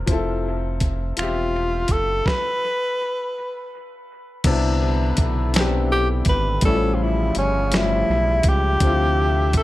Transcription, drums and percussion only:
0.07 kick loud
0.07 closed hi-hat medium
0.80 kick medium
0.80 closed hi-hat medium
1.17 finger snap loud
1.17 closed hi-hat medium
1.88 kick medium
1.88 closed hi-hat medium
2.26 kick medium
2.26 snare medium
4.44 kick loud
4.44 closed hi-hat medium
4.44 crash loud
5.17 kick loud
5.17 closed hi-hat medium
5.54 snare loud
5.54 closed hi-hat medium
6.25 kick medium
6.25 closed hi-hat medium
6.61 kick loud
6.61 closed hi-hat medium
7.35 closed hi-hat medium
7.72 snare loud
7.72 closed hi-hat medium
8.43 kick loud
8.43 closed hi-hat medium
8.80 kick loud
8.80 closed hi-hat medium
9.53 kick medium
9.53 closed hi-hat medium

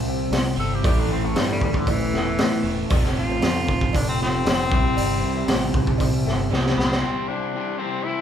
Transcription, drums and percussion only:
0.32 snare loud
0.32 open hi-hat medium
0.32 cowbell medium
0.84 kick loud
0.84 open hi-hat medium
0.84 cowbell medium
1.36 snare loud
1.36 open hi-hat medium
1.36 cowbell medium
1.61 kick medium
1.74 kick medium
1.87 kick loud
1.87 open hi-hat medium
1.87 cowbell medium
2.13 snare soft
2.38 snare loud
2.38 open hi-hat medium
2.38 cowbell medium
2.90 kick loud
2.90 open hi-hat medium
2.90 cowbell medium
3.04 snare soft
3.41 snare loud
3.41 open hi-hat medium
3.41 cowbell medium
3.69 kick medium
3.81 kick medium
3.93 kick loud
3.93 open hi-hat medium
3.93 cowbell medium
4.22 snare soft
4.45 snare loud
4.45 open hi-hat medium
4.45 cowbell medium
4.72 kick loud
4.97 open hi-hat medium
4.97 cowbell medium
5.48 snare loud
5.48 open hi-hat medium
5.48 cowbell medium
5.74 kick loud
5.87 kick medium
5.98 kick loud
5.98 open hi-hat medium
5.98 cowbell medium
6.27 snare soft
6.51 snare medium
6.51 cowbell medium
6.66 snare medium
6.79 snare medium
6.92 snare medium

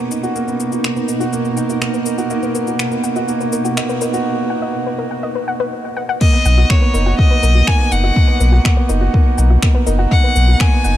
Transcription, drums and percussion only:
0.11 shaker medium
0.23 shaker soft
0.36 shaker soft
0.48 shaker soft
0.60 shaker medium
0.72 shaker soft
0.84 finger snap loud
0.84 shaker soft
0.96 shaker soft
1.09 shaker medium
1.21 shaker soft
1.33 shaker soft
1.45 shaker soft
1.57 shaker medium
1.70 shaker soft
1.82 finger snap medium
1.82 shaker soft
1.94 shaker soft
2.06 shaker medium
2.18 shaker soft
2.30 shaker soft
2.43 shaker soft
2.55 shaker medium
2.67 shaker soft
2.79 finger snap medium
2.79 shaker soft
2.92 shaker soft
3.04 shaker medium
3.16 shaker soft
3.28 shaker soft
3.41 shaker soft
3.52 shaker medium
3.65 shaker soft
3.77 finger snap medium
3.77 shaker soft
3.89 shaker soft
4.01 shaker medium
4.14 shaker soft
6.21 kick loud
6.21 crash loud
6.46 shaker medium
6.70 finger snap loud
6.70 kick loud
6.94 shaker medium
7.19 kick loud
7.43 shaker medium
7.67 finger snap loud
7.67 kick medium
7.92 shaker medium
8.16 kick loud
8.41 shaker medium
8.65 finger snap loud
8.65 kick loud
8.89 shaker medium
9.14 kick loud
9.38 shaker medium
9.63 finger snap loud
9.63 kick loud
9.87 shaker medium
10.12 kick loud
10.36 shaker medium
10.60 finger snap loud
10.60 kick loud
10.85 shaker medium

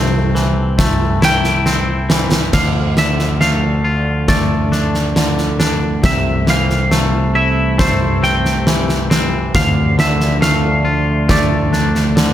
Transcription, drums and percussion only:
0.35 snare soft
0.79 kick medium
0.79 snare medium
1.22 snare medium
1.44 snare soft
1.66 snare soft
2.10 snare medium
2.32 snare medium
2.53 kick medium
2.53 snare medium
2.53 crash medium
2.97 snare medium
3.19 snare soft
3.41 snare medium
4.28 kick medium
4.28 snare medium
4.72 snare soft
4.95 snare soft
5.16 snare medium
5.38 snare soft
5.60 snare medium
6.04 kick medium
6.04 snare medium
6.47 snare medium
6.70 snare soft
6.92 snare medium
7.79 kick medium
7.79 snare medium
8.23 snare soft
8.45 snare soft
8.67 snare medium
8.89 snare soft
9.11 snare medium
9.55 kick medium
9.55 snare medium
9.99 snare medium
10.20 snare soft
10.42 snare medium
11.29 kick medium
11.29 snare medium
11.73 snare soft
11.95 snare soft
12.17 snare medium

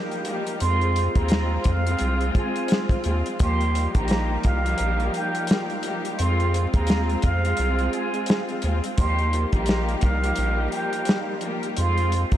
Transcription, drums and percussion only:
0.12 closed hi-hat soft
0.25 closed hi-hat medium
0.47 closed hi-hat medium
0.60 closed hi-hat loud
0.81 closed hi-hat soft
0.96 closed hi-hat medium
1.15 kick medium
1.15 closed hi-hat medium
1.28 snare loud
1.28 closed hi-hat medium
1.64 kick medium
1.64 closed hi-hat medium
1.87 closed hi-hat medium
1.99 closed hi-hat medium
2.21 closed hi-hat soft
2.35 kick loud
2.35 closed hi-hat medium
2.56 closed hi-hat soft
2.68 snare loud
2.68 closed hi-hat loud
2.89 kick medium
2.89 closed hi-hat soft
3.04 closed hi-hat medium
3.26 closed hi-hat medium
3.40 kick loud
3.40 closed hi-hat loud
3.61 closed hi-hat soft
3.75 closed hi-hat medium
3.95 kick loud
3.95 closed hi-hat medium
4.08 snare loud
4.08 closed hi-hat medium
4.43 kick medium
4.43 closed hi-hat medium
4.66 closed hi-hat medium
4.78 closed hi-hat medium
5.00 closed hi-hat soft
5.14 closed hi-hat medium
5.35 closed hi-hat soft
5.47 snare loud
5.47 closed hi-hat loud
5.70 closed hi-hat soft
5.83 closed hi-hat medium
6.05 closed hi-hat medium
6.19 closed hi-hat loud
6.40 closed hi-hat soft
6.54 closed hi-hat medium
6.74 kick medium
6.74 closed hi-hat medium
6.87 snare loud
6.87 closed hi-hat medium
7.09 closed hi-hat soft
7.22 kick medium
7.22 closed hi-hat medium
7.45 closed hi-hat medium
7.57 closed hi-hat medium
7.79 closed hi-hat soft
7.93 closed hi-hat medium
8.14 closed hi-hat medium
8.26 snare loud
8.26 closed hi-hat medium
8.49 closed hi-hat soft
8.62 closed hi-hat medium
8.84 closed hi-hat medium
8.98 kick loud
8.98 closed hi-hat loud
9.19 closed hi-hat soft
9.33 closed hi-hat medium
9.52 kick medium
9.52 closed hi-hat medium
9.66 snare loud
9.66 closed hi-hat medium
9.89 closed hi-hat soft
10.01 kick medium
10.01 closed hi-hat medium
10.24 closed hi-hat medium
10.36 closed hi-hat medium
10.72 closed hi-hat medium
10.93 closed hi-hat medium
11.05 snare loud
11.05 closed hi-hat medium
11.41 closed hi-hat medium
11.63 closed hi-hat medium
11.77 closed hi-hat loud
11.98 closed hi-hat soft
12.12 closed hi-hat medium
12.32 kick loud
12.32 closed hi-hat medium

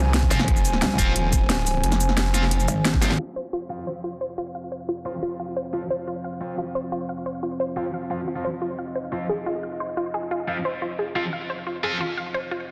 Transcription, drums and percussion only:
0.14 snare loud
0.14 closed hi-hat medium
0.23 kick loud
0.31 open hi-hat medium
0.31 cabasa medium
0.39 snare medium
0.48 kick loud
0.48 closed hi-hat loud
0.56 cabasa soft
0.65 closed hi-hat medium
0.65 cabasa medium
0.73 snare soft
0.82 snare loud
0.82 closed hi-hat loud
0.99 kick medium
0.99 closed hi-hat medium
0.99 cabasa medium
1.16 closed hi-hat loud
1.33 kick loud
1.33 closed hi-hat medium
1.33 cabasa medium
1.50 snare loud
1.50 closed hi-hat medium
1.67 open hi-hat medium
1.67 cabasa medium
1.84 closed hi-hat loud
1.92 snare medium
1.92 cabasa soft
2.00 closed hi-hat medium
2.00 cabasa medium
2.09 snare soft
2.17 snare loud
2.17 closed hi-hat loud
2.34 snare soft
2.34 closed hi-hat medium
2.34 cabasa medium
2.43 snare soft
2.51 closed hi-hat loud
2.60 cabasa soft
2.68 closed hi-hat medium
2.68 cabasa medium
2.85 snare loud
2.85 closed hi-hat loud
2.94 kick loud
2.94 snare soft
3.02 snare medium
3.02 open hi-hat medium
3.02 cabasa medium
3.11 snare medium
3.19 crash medium

